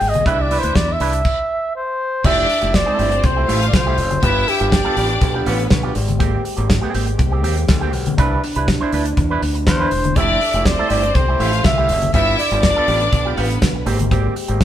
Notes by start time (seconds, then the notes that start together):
Already playing: G#3 C4 G#4 G5 G#5
0.01 G#1, muted clean electric guitar stroke, open hi-hat
0.09 D#5
0.14 B1, muted clean electric guitar stroke, closed hi-hat, high conga
0.26 C2 C3 B3 D4 E4 B4 E5, kick, closed hi-hat, muted conga
0.39 D5, muted clean electric guitar stroke
0.51 D4 E4 B4, open hi-hat
0.59 C5, closed hi-hat
0.64 D2 D4 E4 B4
0.75 E2 D5, muted clean electric guitar stroke, kick, snare, closed hi-hat, high conga
0.88 muted clean electric guitar stroke
0.93 E5
1.00 C2 D4 E4 B4, open hi-hat
1.13 muted clean electric guitar stroke, closed hi-hat
1.25 kick, crash
1.76 C5
2.24 F1 F3 A3 D4 E4 F4 G4 A4 D5 E5, kick, crash, muted conga
2.49 muted clean electric guitar stroke, open hi-hat
2.62 F1 A3 E4 G4, closed hi-hat
2.73 C4 C5 D5, muted clean electric guitar stroke, kick, snare, closed hi-hat, high conga
2.86 A3 E4 A4
2.98 G1 A3 E4 G4, open hi-hat
3.12 muted clean electric guitar stroke, closed hi-hat
3.23 C2 C5, muted clean electric guitar stroke, kick, closed hi-hat, muted conga, low conga
3.36 A3 E4 G4
3.47 A1 A3 E4 F4 G4 F5, open hi-hat
3.62 muted clean electric guitar stroke, closed hi-hat
3.68 D5
3.72 C2 C5, muted clean electric guitar stroke, kick, snare, closed hi-hat, high conga
3.87 A3 E4 G4
3.98 F#1, muted clean electric guitar stroke, open hi-hat
4.11 muted clean electric guitar stroke, closed hi-hat, high conga
4.22 G1 F3 G3 B3 D4 E4 F4 G4 B4 E5, kick, closed hi-hat, muted conga
4.47 G4, muted clean electric guitar stroke, open hi-hat
4.60 G1 B3 F4 G4, closed hi-hat
4.71 D4 D5, muted clean electric guitar stroke, kick, snare, closed hi-hat, high conga
4.85 B3 F4 A4
4.96 A1 B3 F4 G4, open hi-hat
5.09 muted clean electric guitar stroke, closed hi-hat
5.21 B1, muted clean electric guitar stroke, kick, closed hi-hat, muted conga
5.34 B3 F4 G4
5.45 A1 B3 F4 G4 B4, open hi-hat, muted conga
5.59 muted clean electric guitar stroke, closed hi-hat
5.70 B1, muted clean electric guitar stroke, kick, snare, closed hi-hat, high conga
5.83 B3 F4 G4
5.95 G#1 G#3 C4 G4, muted clean electric guitar stroke, open hi-hat
6.08 muted clean electric guitar stroke, closed hi-hat, high conga
6.19 A#3 C4 G4, kick, closed hi-hat, muted conga
6.44 muted clean electric guitar stroke, open hi-hat
6.57 G#1 A#3 C4 G4, closed hi-hat
6.69 muted clean electric guitar stroke, kick, snare, closed hi-hat, high conga
6.82 A#3 C4 G#4
6.94 G#1 A#3 C4 G4, open hi-hat
7.07 muted clean electric guitar stroke, closed hi-hat
7.18 C2, muted clean electric guitar stroke, kick, closed hi-hat, muted conga, low conga
7.32 A#3 C4 G4
7.43 D#2 A#3 C4 G4, open hi-hat, muted conga
7.57 muted clean electric guitar stroke, closed hi-hat
7.68 D2, muted clean electric guitar stroke, kick, snare, closed hi-hat, high conga
7.81 A#3 C4 G4
7.93 B1, muted clean electric guitar stroke, open hi-hat
8.06 muted clean electric guitar stroke, closed hi-hat, high conga
8.18 C2 B2 C3 D4 E4 B4, kick, closed hi-hat, muted conga
8.43 muted clean electric guitar stroke, open hi-hat
8.56 C2 D4 E4 B4, closed hi-hat
8.68 muted clean electric guitar stroke, kick, snare, closed hi-hat, high conga
8.81 D4 E4 C5
8.92 D2 D4 E4 B4, open hi-hat
9.05 muted clean electric guitar stroke, closed hi-hat
9.17 E2, muted clean electric guitar stroke, kick, closed hi-hat, muted conga
9.30 D4 E4 B4
9.42 D2, muted clean electric guitar stroke, open hi-hat
9.55 muted clean electric guitar stroke, closed hi-hat
9.66 E2 C5, muted clean electric guitar stroke, kick, snare, closed hi-hat, high conga
9.80 D4 E4 B4
9.91 E1, muted clean electric guitar stroke, open hi-hat
10.04 muted clean electric guitar stroke, closed hi-hat, high conga
10.15 F1 F3 A3 D4 E4 G4 A4 D5 E5, kick, closed hi-hat, muted conga
10.41 muted clean electric guitar stroke, open hi-hat
10.53 F1 A3 E4 G4, closed hi-hat
10.65 C4 C5 D5, muted clean electric guitar stroke, kick, snare, closed hi-hat, high conga
10.79 A3 E4 A4
10.90 G1 A3 E4 G4 D5, open hi-hat
11.03 muted clean electric guitar stroke, closed hi-hat
11.15 C2 C5, muted clean electric guitar stroke, kick, closed hi-hat, muted conga, low conga
11.28 A3 E4 G4
11.39 A1 A3 E4 F4 G4 F5, open hi-hat, muted conga
11.53 muted clean electric guitar stroke, closed hi-hat
11.63 C2 E5, muted clean electric guitar stroke, kick, snare, closed hi-hat, high conga
11.78 A3 E4 G4
11.89 F#1, muted clean electric guitar stroke, open hi-hat
12.02 muted clean electric guitar stroke, closed hi-hat, high conga
12.14 G1 F3 G3 B3 D4 E4 F4 G4 B4 E5, kick, closed hi-hat, muted conga
12.39 D5, muted clean electric guitar stroke, open hi-hat
12.51 G1 B3 F4 G4, closed hi-hat
12.62 D4 D5, muted clean electric guitar stroke, kick, snare, closed hi-hat, high conga
12.76 B3 F4 A4
12.88 A1 B3 F4 G4, open hi-hat
13.00 muted clean electric guitar stroke, closed hi-hat
13.12 B1, muted clean electric guitar stroke, kick, closed hi-hat, muted conga
13.25 B3 F4 G4
13.36 A1 B3 F4 G4 B4, open hi-hat
13.49 muted clean electric guitar stroke, closed hi-hat
13.61 B1, muted clean electric guitar stroke, kick, snare, closed hi-hat, high conga
13.75 muted clean electric guitar stroke
13.86 G#1 G#3 A#3 C4 G4, open hi-hat
13.99 muted clean electric guitar stroke, closed hi-hat, high conga
14.11 A#3 C4 G4, kick, closed hi-hat, muted conga
14.36 muted clean electric guitar stroke, open hi-hat
14.48 G#1 A#3 C4 G4, closed hi-hat
14.61 muted clean electric guitar stroke, kick, snare, closed hi-hat, high conga